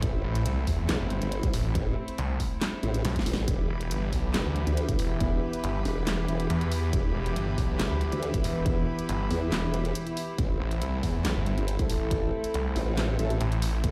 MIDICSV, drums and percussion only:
0, 0, Header, 1, 2, 480
1, 0, Start_track
1, 0, Key_signature, 1, "minor"
1, 0, Tempo, 431655
1, 28, Time_signature, 4, 2, 24, 8
1, 15469, End_track
2, 0, Start_track
2, 0, Title_t, "Drums"
2, 28, Note_on_c, 9, 36, 112
2, 28, Note_on_c, 9, 42, 85
2, 139, Note_off_c, 9, 36, 0
2, 139, Note_off_c, 9, 42, 0
2, 393, Note_on_c, 9, 42, 55
2, 504, Note_off_c, 9, 42, 0
2, 508, Note_on_c, 9, 42, 85
2, 619, Note_off_c, 9, 42, 0
2, 748, Note_on_c, 9, 36, 60
2, 748, Note_on_c, 9, 46, 68
2, 859, Note_off_c, 9, 36, 0
2, 859, Note_off_c, 9, 46, 0
2, 988, Note_on_c, 9, 38, 111
2, 988, Note_on_c, 9, 39, 86
2, 988, Note_on_c, 9, 42, 81
2, 1099, Note_off_c, 9, 38, 0
2, 1099, Note_off_c, 9, 39, 0
2, 1099, Note_off_c, 9, 42, 0
2, 1228, Note_on_c, 9, 42, 54
2, 1339, Note_off_c, 9, 42, 0
2, 1353, Note_on_c, 9, 42, 54
2, 1464, Note_off_c, 9, 42, 0
2, 1467, Note_on_c, 9, 42, 84
2, 1579, Note_off_c, 9, 42, 0
2, 1593, Note_on_c, 9, 36, 108
2, 1593, Note_on_c, 9, 42, 55
2, 1704, Note_off_c, 9, 36, 0
2, 1704, Note_off_c, 9, 42, 0
2, 1707, Note_on_c, 9, 46, 98
2, 1819, Note_off_c, 9, 46, 0
2, 1947, Note_on_c, 9, 36, 121
2, 1947, Note_on_c, 9, 42, 85
2, 2059, Note_off_c, 9, 36, 0
2, 2059, Note_off_c, 9, 42, 0
2, 2313, Note_on_c, 9, 42, 55
2, 2424, Note_off_c, 9, 42, 0
2, 2428, Note_on_c, 9, 42, 85
2, 2539, Note_off_c, 9, 42, 0
2, 2667, Note_on_c, 9, 36, 58
2, 2668, Note_on_c, 9, 46, 68
2, 2779, Note_off_c, 9, 36, 0
2, 2779, Note_off_c, 9, 46, 0
2, 2908, Note_on_c, 9, 38, 119
2, 2908, Note_on_c, 9, 39, 91
2, 2908, Note_on_c, 9, 42, 84
2, 3019, Note_off_c, 9, 38, 0
2, 3019, Note_off_c, 9, 39, 0
2, 3019, Note_off_c, 9, 42, 0
2, 3148, Note_on_c, 9, 42, 56
2, 3259, Note_off_c, 9, 42, 0
2, 3274, Note_on_c, 9, 42, 57
2, 3385, Note_off_c, 9, 42, 0
2, 3388, Note_on_c, 9, 38, 69
2, 3388, Note_on_c, 9, 42, 87
2, 3499, Note_off_c, 9, 38, 0
2, 3499, Note_off_c, 9, 42, 0
2, 3513, Note_on_c, 9, 36, 61
2, 3513, Note_on_c, 9, 42, 57
2, 3548, Note_on_c, 9, 38, 84
2, 3624, Note_off_c, 9, 36, 0
2, 3624, Note_off_c, 9, 42, 0
2, 3628, Note_on_c, 9, 46, 100
2, 3659, Note_off_c, 9, 38, 0
2, 3708, Note_on_c, 9, 38, 102
2, 3739, Note_off_c, 9, 46, 0
2, 3819, Note_off_c, 9, 38, 0
2, 3867, Note_on_c, 9, 36, 122
2, 3868, Note_on_c, 9, 42, 81
2, 3979, Note_off_c, 9, 36, 0
2, 3979, Note_off_c, 9, 42, 0
2, 4234, Note_on_c, 9, 42, 57
2, 4345, Note_off_c, 9, 42, 0
2, 4348, Note_on_c, 9, 42, 83
2, 4459, Note_off_c, 9, 42, 0
2, 4588, Note_on_c, 9, 36, 62
2, 4588, Note_on_c, 9, 46, 64
2, 4699, Note_off_c, 9, 36, 0
2, 4699, Note_off_c, 9, 46, 0
2, 4828, Note_on_c, 9, 38, 123
2, 4828, Note_on_c, 9, 39, 92
2, 4828, Note_on_c, 9, 42, 83
2, 4939, Note_off_c, 9, 38, 0
2, 4939, Note_off_c, 9, 39, 0
2, 4939, Note_off_c, 9, 42, 0
2, 5068, Note_on_c, 9, 42, 54
2, 5179, Note_off_c, 9, 42, 0
2, 5193, Note_on_c, 9, 42, 53
2, 5304, Note_off_c, 9, 42, 0
2, 5307, Note_on_c, 9, 42, 88
2, 5419, Note_off_c, 9, 42, 0
2, 5433, Note_on_c, 9, 36, 109
2, 5433, Note_on_c, 9, 42, 57
2, 5544, Note_off_c, 9, 36, 0
2, 5544, Note_off_c, 9, 42, 0
2, 5548, Note_on_c, 9, 46, 93
2, 5659, Note_off_c, 9, 46, 0
2, 5787, Note_on_c, 9, 36, 127
2, 5788, Note_on_c, 9, 42, 82
2, 5899, Note_off_c, 9, 36, 0
2, 5899, Note_off_c, 9, 42, 0
2, 6154, Note_on_c, 9, 42, 54
2, 6265, Note_off_c, 9, 42, 0
2, 6268, Note_on_c, 9, 42, 81
2, 6379, Note_off_c, 9, 42, 0
2, 6508, Note_on_c, 9, 46, 59
2, 6620, Note_off_c, 9, 46, 0
2, 6749, Note_on_c, 9, 38, 120
2, 6749, Note_on_c, 9, 39, 92
2, 6749, Note_on_c, 9, 42, 78
2, 6860, Note_off_c, 9, 38, 0
2, 6860, Note_off_c, 9, 39, 0
2, 6860, Note_off_c, 9, 42, 0
2, 6989, Note_on_c, 9, 42, 56
2, 7100, Note_off_c, 9, 42, 0
2, 7114, Note_on_c, 9, 42, 55
2, 7225, Note_off_c, 9, 42, 0
2, 7228, Note_on_c, 9, 42, 84
2, 7340, Note_off_c, 9, 42, 0
2, 7353, Note_on_c, 9, 42, 55
2, 7465, Note_off_c, 9, 42, 0
2, 7468, Note_on_c, 9, 46, 89
2, 7579, Note_off_c, 9, 46, 0
2, 7708, Note_on_c, 9, 36, 127
2, 7708, Note_on_c, 9, 42, 76
2, 7819, Note_off_c, 9, 36, 0
2, 7819, Note_off_c, 9, 42, 0
2, 8073, Note_on_c, 9, 42, 55
2, 8184, Note_off_c, 9, 42, 0
2, 8188, Note_on_c, 9, 42, 77
2, 8299, Note_off_c, 9, 42, 0
2, 8428, Note_on_c, 9, 36, 66
2, 8428, Note_on_c, 9, 46, 61
2, 8539, Note_off_c, 9, 36, 0
2, 8539, Note_off_c, 9, 46, 0
2, 8668, Note_on_c, 9, 38, 125
2, 8668, Note_on_c, 9, 39, 93
2, 8668, Note_on_c, 9, 42, 77
2, 8779, Note_off_c, 9, 38, 0
2, 8779, Note_off_c, 9, 39, 0
2, 8779, Note_off_c, 9, 42, 0
2, 8908, Note_on_c, 9, 42, 54
2, 9019, Note_off_c, 9, 42, 0
2, 9033, Note_on_c, 9, 42, 51
2, 9144, Note_off_c, 9, 42, 0
2, 9148, Note_on_c, 9, 42, 84
2, 9259, Note_off_c, 9, 42, 0
2, 9273, Note_on_c, 9, 36, 115
2, 9273, Note_on_c, 9, 42, 55
2, 9384, Note_off_c, 9, 36, 0
2, 9384, Note_off_c, 9, 42, 0
2, 9387, Note_on_c, 9, 46, 91
2, 9498, Note_off_c, 9, 46, 0
2, 9627, Note_on_c, 9, 42, 75
2, 9628, Note_on_c, 9, 36, 127
2, 9739, Note_off_c, 9, 36, 0
2, 9739, Note_off_c, 9, 42, 0
2, 9993, Note_on_c, 9, 42, 51
2, 10105, Note_off_c, 9, 42, 0
2, 10108, Note_on_c, 9, 42, 80
2, 10219, Note_off_c, 9, 42, 0
2, 10348, Note_on_c, 9, 46, 62
2, 10459, Note_off_c, 9, 46, 0
2, 10588, Note_on_c, 9, 38, 121
2, 10588, Note_on_c, 9, 39, 90
2, 10588, Note_on_c, 9, 42, 76
2, 10699, Note_off_c, 9, 38, 0
2, 10699, Note_off_c, 9, 39, 0
2, 10699, Note_off_c, 9, 42, 0
2, 10828, Note_on_c, 9, 42, 53
2, 10939, Note_off_c, 9, 42, 0
2, 10953, Note_on_c, 9, 42, 51
2, 11065, Note_off_c, 9, 42, 0
2, 11068, Note_on_c, 9, 42, 81
2, 11179, Note_off_c, 9, 42, 0
2, 11193, Note_on_c, 9, 42, 50
2, 11305, Note_off_c, 9, 42, 0
2, 11308, Note_on_c, 9, 46, 90
2, 11419, Note_off_c, 9, 46, 0
2, 11548, Note_on_c, 9, 36, 122
2, 11548, Note_on_c, 9, 42, 76
2, 11659, Note_off_c, 9, 36, 0
2, 11659, Note_off_c, 9, 42, 0
2, 11913, Note_on_c, 9, 42, 50
2, 12024, Note_off_c, 9, 42, 0
2, 12028, Note_on_c, 9, 42, 79
2, 12139, Note_off_c, 9, 42, 0
2, 12267, Note_on_c, 9, 36, 61
2, 12268, Note_on_c, 9, 46, 64
2, 12379, Note_off_c, 9, 36, 0
2, 12379, Note_off_c, 9, 46, 0
2, 12508, Note_on_c, 9, 38, 119
2, 12508, Note_on_c, 9, 39, 85
2, 12508, Note_on_c, 9, 42, 75
2, 12619, Note_off_c, 9, 38, 0
2, 12619, Note_off_c, 9, 39, 0
2, 12619, Note_off_c, 9, 42, 0
2, 12748, Note_on_c, 9, 42, 53
2, 12859, Note_off_c, 9, 42, 0
2, 12873, Note_on_c, 9, 42, 49
2, 12984, Note_off_c, 9, 42, 0
2, 12988, Note_on_c, 9, 42, 83
2, 13099, Note_off_c, 9, 42, 0
2, 13113, Note_on_c, 9, 36, 106
2, 13113, Note_on_c, 9, 42, 51
2, 13224, Note_off_c, 9, 36, 0
2, 13224, Note_off_c, 9, 42, 0
2, 13228, Note_on_c, 9, 46, 97
2, 13339, Note_off_c, 9, 46, 0
2, 13468, Note_on_c, 9, 36, 122
2, 13468, Note_on_c, 9, 42, 80
2, 13579, Note_off_c, 9, 36, 0
2, 13579, Note_off_c, 9, 42, 0
2, 13833, Note_on_c, 9, 42, 54
2, 13944, Note_off_c, 9, 42, 0
2, 13948, Note_on_c, 9, 42, 78
2, 14059, Note_off_c, 9, 42, 0
2, 14188, Note_on_c, 9, 46, 65
2, 14299, Note_off_c, 9, 46, 0
2, 14428, Note_on_c, 9, 38, 114
2, 14428, Note_on_c, 9, 39, 84
2, 14428, Note_on_c, 9, 42, 79
2, 14539, Note_off_c, 9, 38, 0
2, 14539, Note_off_c, 9, 39, 0
2, 14539, Note_off_c, 9, 42, 0
2, 14668, Note_on_c, 9, 42, 54
2, 14779, Note_off_c, 9, 42, 0
2, 14793, Note_on_c, 9, 42, 53
2, 14904, Note_off_c, 9, 42, 0
2, 14908, Note_on_c, 9, 42, 80
2, 15019, Note_off_c, 9, 42, 0
2, 15033, Note_on_c, 9, 42, 54
2, 15144, Note_off_c, 9, 42, 0
2, 15148, Note_on_c, 9, 46, 99
2, 15259, Note_off_c, 9, 46, 0
2, 15388, Note_on_c, 9, 36, 118
2, 15388, Note_on_c, 9, 42, 82
2, 15469, Note_off_c, 9, 36, 0
2, 15469, Note_off_c, 9, 42, 0
2, 15469, End_track
0, 0, End_of_file